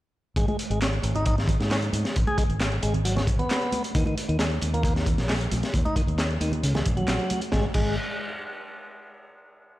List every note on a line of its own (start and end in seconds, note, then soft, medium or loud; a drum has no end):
0.36 0.46 G#1 loud
0.36 0.46 G#3 medium
0.36 kick loud
0.36 closed hi-hat medium
0.36 closed hi-hat soft
0.48 0.57 G#3 medium
0.48 closed hi-hat soft
0.48 high conga loud
0.59 closed hi-hat medium
0.70 1.00 G#1 loud
0.70 0.79 G#3 medium
0.70 closed hi-hat soft
0.82 0.87 C#4 medium
0.82 snare loud
0.82 clap loud
0.82 closed hi-hat soft
0.82 closed hi-hat medium
0.93 closed hi-hat soft
1.02 1.56 G#1 loud
1.02 closed hi-hat medium
1.02 high conga medium
1.15 1.25 D#4 medium
1.15 closed hi-hat soft
1.15 low conga medium
1.26 1.36 D#4 medium
1.26 kick loud
1.26 closed hi-hat medium
1.26 closed hi-hat soft
1.38 snare soft
1.38 closed hi-hat soft
1.48 kick medium
1.48 closed hi-hat medium
1.48 low conga loud
1.60 1.90 G#2 loud
1.60 snare soft
1.60 closed hi-hat soft
1.71 1.77 C#4 medium
1.71 snare loud
1.71 clap loud
1.71 closed hi-hat soft
1.71 open hi-hat medium
1.82 closed hi-hat soft
1.93 2.02 G#2 loud
1.93 closed hi-hat medium
1.93 high conga medium
2.05 snare medium
2.05 closed hi-hat soft
2.16 2.25 G#1 loud
2.16 kick loud
2.16 closed hi-hat medium
2.16 closed hi-hat soft
2.27 2.37 G#4 medium
2.27 closed hi-hat soft
2.27 high conga loud
2.38 2.44 G#3 medium
2.38 kick loud
2.38 closed hi-hat medium
2.49 2.79 G#1 loud
2.49 closed hi-hat soft
2.60 snare loud
2.60 clap loud
2.60 closed hi-hat medium
2.60 closed hi-hat soft
2.72 closed hi-hat soft
2.83 3.36 G#1 loud
2.83 2.94 G#3 medium
2.83 closed hi-hat medium
2.94 closed hi-hat soft
2.94 low conga medium
3.05 3.15 F#3 medium
3.05 closed hi-hat medium
3.05 closed hi-hat soft
3.16 3.22 C#4 medium
3.16 snare medium
3.16 closed hi-hat soft
3.16 low conga medium
3.27 kick loud
3.27 closed hi-hat medium
3.39 3.83 B3 medium
3.39 closed hi-hat soft
3.39 low conga medium
3.50 snare loud
3.50 clap loud
3.50 closed hi-hat medium
3.50 closed hi-hat soft
3.62 closed hi-hat soft
3.72 closed hi-hat medium
3.72 high conga loud
3.84 closed hi-hat soft
3.95 4.04 D#2 loud
3.95 4.04 D#3 medium
3.95 kick loud
3.95 closed hi-hat loud
3.95 closed hi-hat soft
4.06 4.15 D#3 medium
4.06 closed hi-hat soft
4.06 high conga loud
4.18 closed hi-hat medium
4.29 4.59 D#2 loud
4.29 4.37 D#3 medium
4.29 closed hi-hat soft
4.39 4.45 G#3 medium
4.39 snare loud
4.39 clap loud
4.39 closed hi-hat medium
4.39 closed hi-hat soft
4.51 closed hi-hat soft
4.61 5.15 D#2 loud
4.61 closed hi-hat medium
4.61 high conga medium
4.74 4.83 A#3 medium
4.74 closed hi-hat soft
4.74 low conga medium
4.83 4.93 A#3 medium
4.83 kick loud
4.83 closed hi-hat soft
4.83 closed hi-hat medium
4.96 snare medium
4.96 closed hi-hat soft
5.06 kick loud
5.06 closed hi-hat medium
5.06 low conga medium
5.18 5.48 A#1 loud
5.18 snare soft
5.18 closed hi-hat soft
5.29 5.35 G#3 medium
5.29 snare loud
5.29 clap loud
5.29 closed hi-hat soft
5.29 open hi-hat medium
5.41 closed hi-hat soft
5.52 5.61 A#1 loud
5.52 closed hi-hat medium
5.52 high conga loud
5.63 snare medium
5.63 closed hi-hat soft
5.74 5.83 D#2 loud
5.74 kick loud
5.74 closed hi-hat soft
5.74 closed hi-hat loud
5.85 5.96 D#4 medium
5.85 closed hi-hat soft
5.85 high conga loud
5.96 6.02 D#3 medium
5.96 kick medium
5.96 closed hi-hat medium
6.07 6.38 D#2 loud
6.07 closed hi-hat soft
6.18 snare loud
6.18 clap loud
6.18 closed hi-hat loud
6.18 closed hi-hat soft
6.31 closed hi-hat soft
6.40 6.62 D#2 loud
6.40 6.52 D#3 medium
6.40 closed hi-hat medium
6.40 high conga medium
6.52 closed hi-hat soft
6.52 low conga medium
6.63 6.82 C#2 loud
6.63 6.74 C#3 medium
6.63 closed hi-hat medium
6.63 closed hi-hat soft
6.74 6.80 G#3 medium
6.74 snare medium
6.74 closed hi-hat soft
6.74 high conga medium
6.74 low conga loud
6.86 7.04 A#1 loud
6.86 kick medium
6.86 closed hi-hat medium
6.97 7.41 F#3 medium
6.97 closed hi-hat soft
6.97 low conga medium
7.08 7.17 A#1 medium
7.08 snare loud
7.08 clap loud
7.08 closed hi-hat soft
7.08 closed hi-hat loud
7.19 closed hi-hat soft
7.30 closed hi-hat medium
7.30 high conga medium
7.41 closed hi-hat soft
7.52 7.65 G#1 loud
7.52 7.65 G#3 medium
7.52 kick loud
7.52 snare loud
7.74 7.96 G#1 loud
7.74 7.96 G#3 medium
7.74 kick loud
7.74 crash loud